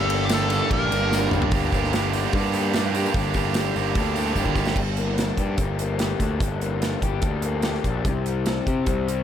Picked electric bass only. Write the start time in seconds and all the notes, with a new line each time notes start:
Already playing: G1
0.71 A#1
0.91 G1
1.34 G1
1.45 G1
1.52 G1
1.72 G1
2.33 G2
3.14 G1
3.35 G1
3.76 G1
3.95 D2
4.36 G1
4.45 G1
4.55 G1
4.76 G1
5.38 G2
5.58 G1
6.20 D2
6.40 G1
7.02 G1
7.22 D2
7.84 A#1
8.05 C2
8.67 C3
8.87 C2